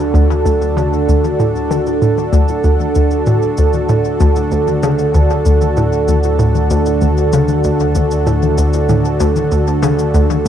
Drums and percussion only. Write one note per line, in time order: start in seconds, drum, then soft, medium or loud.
0.15 cabasa soft
0.30 high tom soft
0.30 cabasa soft
0.46 cabasa medium
0.62 cabasa soft
0.78 high tom soft
0.78 cabasa soft
0.93 cabasa soft
1.09 cabasa medium
1.24 high tom soft
1.24 cabasa medium
1.40 cabasa soft
1.55 cabasa soft
1.71 high tom soft
1.71 cabasa medium
1.86 cabasa medium
2.02 cabasa medium
2.17 high tom soft
2.17 cabasa soft
2.33 cabasa medium
2.48 cabasa soft
2.64 cabasa soft
2.79 high tom soft
2.79 cabasa soft
2.95 cabasa medium
3.11 cabasa soft
3.26 high tom soft
3.26 cabasa soft
3.42 cabasa soft
3.57 cabasa medium
3.73 high tom soft
3.73 cabasa soft
3.89 cabasa soft
4.05 cabasa soft
4.20 high tom soft
4.20 cabasa medium
4.36 cabasa soft
4.51 cabasa soft
4.67 high tom soft
4.67 cabasa soft
4.83 cabasa medium
4.99 cabasa soft
5.14 high tom soft
5.14 cabasa soft
5.30 cabasa soft
5.45 cabasa medium
5.61 high tom soft
5.61 cabasa soft
5.77 cabasa soft
5.92 cabasa soft
6.08 high tom soft
6.08 cabasa medium
6.23 cabasa soft
6.39 cabasa soft
6.55 high tom soft
6.55 cabasa soft
6.70 cabasa medium
6.86 cabasa soft
7.01 high tom soft
7.01 cabasa soft
7.17 cabasa soft
7.33 cabasa medium
7.48 high tom soft
7.48 cabasa soft
7.64 cabasa soft
7.79 cabasa soft
7.95 high tom soft
7.95 cabasa medium
8.11 cabasa soft
8.27 cabasa soft
8.42 high tom soft
8.42 cabasa soft
8.58 cabasa medium
8.73 cabasa soft
8.89 high tom soft
8.89 cabasa soft
9.05 cabasa soft
9.20 cabasa medium
9.36 high tom soft
9.36 cabasa soft
9.52 cabasa soft
9.67 cabasa soft
9.83 high tom soft
9.83 cabasa medium
9.99 cabasa soft
10.14 cabasa soft
10.30 high tom soft
10.30 cabasa soft